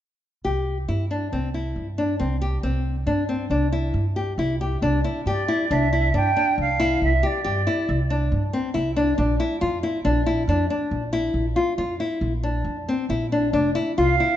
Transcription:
0.45 0.84 C2 medium
0.45 0.77 G4 medium
0.88 1.28 G2 medium
0.88 1.04 E4 soft
1.11 1.26 D4 soft
1.32 1.71 C2 medium
1.32 1.48 C4 medium
1.54 1.86 E4 soft
1.76 2.15 G2 medium
1.98 2.14 D4 soft
2.19 2.59 C2 medium
2.19 2.35 C4 medium
2.41 2.57 G4 medium
2.63 3.02 C2 medium
2.63 2.95 C4 medium
3.06 3.46 G2 medium
3.06 3.22 D4 medium
3.29 3.44 C4 medium
3.50 3.89 C2 medium
3.50 3.66 D4 medium
3.72 4.04 E4 soft
3.94 4.33 G2 medium
4.16 4.32 G4 soft
4.38 4.78 C2 medium
4.38 4.55 E4 soft
4.61 4.77 G4 medium
4.82 5.02 C2 medium
4.82 4.98 D4 medium
5.04 5.20 E4 medium
5.26 5.46 G2 medium
5.26 5.43 G4 medium
5.26 5.74 D5 medium
5.48 5.64 E4 medium
5.71 6.10 C2 medium
5.71 5.87 D4 medium
5.71 6.15 E5 medium
5.93 6.09 E4 soft
6.14 6.34 G2 medium
6.14 6.30 D4 medium
6.14 6.56 G5 medium
6.37 6.68 D4 medium
6.58 6.97 C2 medium
6.58 7.00 F5 medium
6.80 7.11 E4 medium
7.02 7.21 C2 medium
7.02 7.28 E5 medium
7.23 7.39 G4 medium
7.23 8.12 D5 medium
7.44 7.65 G2 medium
7.44 7.61 G4 medium
7.67 7.99 E4 medium
7.89 8.28 C2 medium
8.10 8.42 D4 medium
8.32 8.51 G2 medium
8.53 8.69 C4 medium
8.74 9.14 C2 medium
8.74 8.90 E4 medium
8.96 9.12 D4 medium
9.18 9.38 A#1 medium
9.18 9.34 D4 medium
9.40 9.56 E4 medium
9.61 9.81 F2 medium
9.61 9.77 F4 medium
9.83 9.99 E4 medium
10.05 10.44 A#1 medium
10.05 10.21 D4 medium
10.26 10.42 E4 medium
10.47 10.67 F2 medium
10.47 10.64 D4 medium
10.70 11.02 D4 medium
10.91 11.30 A#1 medium
11.13 11.45 E4 medium
11.34 11.54 A#1 medium
11.56 11.72 F4 medium
11.78 11.98 F2 medium
11.78 11.94 F4 medium
12.00 12.32 E4 medium
12.21 12.61 A#1 medium
12.43 12.76 D4 medium
12.64 12.85 F2 medium
12.88 13.04 C4 medium
13.09 13.49 A#1 medium
13.09 13.26 E4 medium
13.32 13.48 D4 medium
13.53 13.73 F1 medium
13.53 13.70 D4 medium
13.75 13.91 E4 medium
13.98 14.17 C2 medium
13.98 14.14 F4 medium
13.98 14.37 F5 medium
14.20 14.36 E4 medium

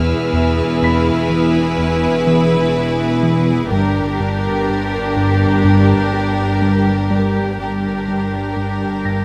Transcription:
0.00 3.68 E1 medium
0.00 0.14 E2 medium
0.00 3.68 E2 medium
0.00 3.68 E4 medium
0.00 3.68 G#4 medium
0.00 3.69 B4 medium
0.00 3.20 E6 soft
0.00 2.23 F6 soft
0.33 0.62 E2 medium
0.82 1.11 E2 medium
0.82 3.69 B5 soft
0.82 3.69 B6 medium
1.30 1.59 E2 medium
1.78 2.08 E2 medium
2.27 2.56 E3 medium
2.76 3.05 E3 medium
3.23 3.52 E3 medium
3.72 7.55 G1 medium
3.72 4.01 G2 medium
3.72 7.56 G2 medium
3.72 7.59 D4 medium
3.72 7.56 G4 medium
3.72 7.56 A#4 medium
4.20 4.49 G2 medium
4.69 4.98 G2 medium
5.17 5.46 G2 medium
5.64 5.94 G2 medium
6.13 6.42 G3 soft
6.62 6.91 G3 soft
7.10 7.40 G3 medium
7.59 9.25 G1 soft
7.59 7.88 G2 medium
7.59 9.25 G2 soft
7.59 9.25 D4 soft
7.59 9.25 G4 soft
7.59 9.25 A#4 soft
8.08 8.37 G2 soft
8.56 8.85 G2 soft
9.05 9.25 G2 medium
9.05 9.25 A#6 soft

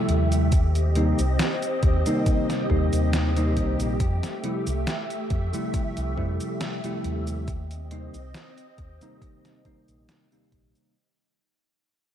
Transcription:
0.00 0.49 C3 medium
0.00 0.50 F3 medium
0.00 0.50 G3 medium
0.00 0.49 A3 medium
0.00 0.50 A3 medium
0.00 0.50 E4 medium
0.00 0.49 G4 medium
0.00 0.49 E5 medium
0.09 1.12 D#2 medium
0.09 closed hi-hat medium
0.32 closed hi-hat soft
0.32 cabasa medium
0.52 3.97 C4 medium
0.52 10.92 G4 medium
0.52 3.97 D#5 medium
0.52 kick loud
0.52 closed hi-hat medium
0.52 cabasa soft
0.75 closed hi-hat soft
0.75 cabasa soft
0.95 1.19 C3 medium
0.95 1.19 D#3 medium
0.95 1.19 G3 medium
0.95 1.20 A#3 medium
0.95 1.20 D#4 medium
0.95 closed hi-hat medium
1.19 1.36 C2 medium
1.19 closed hi-hat soft
1.19 cabasa medium
1.39 snare loud
1.39 closed hi-hat medium
1.39 cabasa soft
1.62 closed hi-hat soft
1.62 cabasa soft
1.83 2.02 D#2 medium
1.83 kick loud
1.83 closed hi-hat medium
2.06 2.65 C3 medium
2.06 2.65 D#3 medium
2.06 2.65 G3 medium
2.06 2.65 A#3 medium
2.06 2.65 D#4 medium
2.06 closed hi-hat soft
2.06 cabasa medium
2.26 kick loud
2.26 closed hi-hat medium
2.26 cabasa soft
2.50 snare soft
2.50 closed hi-hat soft
2.50 cabasa soft
2.69 2.89 D#2 loud
2.69 3.31 C3 medium
2.69 3.31 D#3 medium
2.69 3.31 G3 medium
2.69 3.31 A#3 medium
2.69 3.31 D#4 medium
2.69 kick medium
2.93 3.57 D#2 medium
2.93 closed hi-hat soft
2.93 cabasa medium
3.13 snare loud
3.13 closed hi-hat medium
3.13 cabasa soft
3.36 3.98 C3 medium
3.36 3.98 D#3 medium
3.36 3.98 G3 medium
3.36 3.98 A#3 medium
3.36 3.98 D#4 medium
3.36 closed hi-hat soft
3.36 cabasa soft
3.57 3.76 C2 loud
3.57 kick medium
3.57 closed hi-hat medium
3.80 3.96 A#1 loud
3.80 closed hi-hat soft
3.80 cabasa medium
4.00 4.19 F2 loud
4.00 7.44 A3 medium
4.00 7.45 E5 medium
4.00 kick loud
4.00 closed hi-hat medium
4.00 cabasa soft
4.23 snare soft
4.23 closed hi-hat soft
4.23 cabasa soft
4.43 4.67 C3 medium
4.43 4.67 F3 medium
4.43 4.67 G3 medium
4.43 4.67 A3 medium
4.43 4.68 E4 medium
4.43 closed hi-hat medium
4.67 4.83 C2 medium
4.67 closed hi-hat soft
4.67 cabasa medium
4.87 snare loud
4.87 closed hi-hat medium
4.87 cabasa soft
5.10 closed hi-hat soft
5.10 cabasa soft
5.30 5.49 F2 medium
5.30 kick loud
5.30 closed hi-hat medium
5.53 6.12 C3 medium
5.53 6.12 F3 medium
5.53 6.12 G3 medium
5.53 6.13 A3 medium
5.53 6.13 E4 medium
5.53 closed hi-hat soft
5.53 cabasa medium
5.74 muted fingered electric bass stroke soft
5.74 kick loud
5.74 closed hi-hat medium
5.74 cabasa soft
5.97 6.14 C2 medium
5.97 closed hi-hat soft
5.97 cabasa soft
6.17 6.36 F2 loud
6.17 6.78 C3 medium
6.17 6.78 F3 medium
6.17 6.78 G3 medium
6.17 6.79 A3 medium
6.17 6.79 E4 medium
6.17 kick medium
6.40 closed hi-hat soft
6.40 cabasa medium
6.61 snare loud
6.61 closed hi-hat medium
6.61 cabasa soft
6.84 7.45 C3 medium
6.84 7.45 F3 medium
6.84 7.46 G3 medium
6.84 7.46 A3 medium
6.84 7.46 E4 medium
6.84 closed hi-hat soft
6.84 cabasa soft
7.04 8.08 D#2 medium
7.04 closed hi-hat medium
7.27 closed hi-hat soft
7.27 cabasa medium
7.48 10.92 C4 medium
7.48 10.92 D#5 medium
7.48 kick loud
7.48 closed hi-hat loud
7.48 cabasa soft
7.71 closed hi-hat soft
7.71 cabasa soft
7.91 8.15 C3 medium
7.91 8.15 D#3 medium
7.91 8.15 G3 medium
7.91 8.15 A#3 medium
7.91 8.15 D#4 medium
7.91 closed hi-hat medium
8.14 8.31 C2 medium
8.14 closed hi-hat soft
8.14 cabasa medium
8.35 snare loud
8.35 closed hi-hat medium
8.35 cabasa soft
8.58 closed hi-hat soft
8.58 cabasa soft
8.78 8.97 D#2 medium
8.78 kick loud
8.78 closed hi-hat medium
9.01 9.60 C3 medium
9.01 9.60 D#3 medium
9.01 9.61 G3 medium
9.01 9.61 A#3 medium
9.01 9.61 D#4 loud
9.01 closed hi-hat soft
9.01 cabasa medium
9.22 kick loud
9.22 closed hi-hat loud
9.22 cabasa soft
9.45 snare soft
9.45 closed hi-hat soft
9.45 cabasa soft
9.65 10.26 C3 medium
9.65 10.26 D#3 medium
9.65 10.27 G3 medium
9.65 10.27 A#3 medium
9.65 10.27 D#4 medium
9.65 kick medium
9.65 closed hi-hat soft
9.88 10.05 A#1 medium
9.88 closed hi-hat soft
9.88 cabasa medium
10.09 snare loud
10.09 closed hi-hat loud
10.09 cabasa medium
10.32 10.93 C3 medium
10.32 10.93 D#3 medium
10.32 10.94 G3 medium
10.32 10.94 A#3 medium
10.32 10.94 D#4 medium
10.32 closed hi-hat soft
10.32 cabasa soft
10.52 10.71 A#1 medium
10.52 kick medium
10.52 closed hi-hat medium
10.75 closed hi-hat soft
10.75 cabasa medium

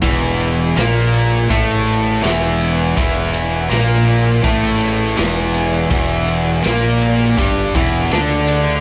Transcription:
0.02 0.73 E1 medium
0.02 0.75 E2 medium
0.02 0.75 E3 loud
0.02 kick loud
0.02 ride medium
0.40 ride medium
0.76 1.46 A#1 medium
0.76 1.49 A#2 medium
0.76 1.49 A#3 loud
0.76 snare loud
0.76 ride medium
1.14 ride medium
1.49 2.20 A1 medium
1.49 2.22 A2 medium
1.49 2.23 A3 loud
1.49 kick loud
1.49 ride medium
1.87 ride medium
2.22 2.93 E1 loud
2.22 2.94 E2 medium
2.22 2.96 E3 loud
2.22 snare loud
2.22 ride loud
2.61 ride medium
2.95 3.67 E1 loud
2.95 3.69 E2 medium
2.95 3.69 E3 loud
2.95 kick loud
2.95 ride medium
3.34 ride medium
3.70 4.40 A#1 loud
3.70 4.42 A#2 medium
3.70 4.43 A#3 medium
3.70 snare loud
3.70 ride medium
4.08 ride medium
4.43 5.14 A1 medium
4.43 5.16 A2 loud
4.43 5.16 A3 loud
4.43 kick loud
4.43 ride medium
4.81 ride medium
5.16 5.87 E1 loud
5.16 5.89 E2 medium
5.16 5.89 E3 loud
5.16 snare loud
5.16 ride medium
5.54 ride medium
5.90 6.60 E1 medium
5.90 6.63 E2 loud
5.90 6.63 E3 loud
5.90 kick loud
5.90 ride medium
6.28 ride medium
6.62 7.34 A#1 medium
6.62 7.35 A#2 medium
6.62 7.36 A#3 loud
6.62 snare loud
6.62 ride medium
7.02 ride medium
7.37 7.72 G1 medium
7.37 7.73 G2 medium
7.37 7.73 G3 loud
7.37 kick loud
7.37 ride medium
7.75 8.09 E1 medium
7.75 8.10 E2 medium
7.75 8.11 E3 loud
7.75 kick loud
7.75 ride medium
8.11 8.80 D2 medium
8.11 8.80 D3 medium
8.11 8.80 D4 loud
8.11 snare loud
8.11 ride loud
8.48 ride medium

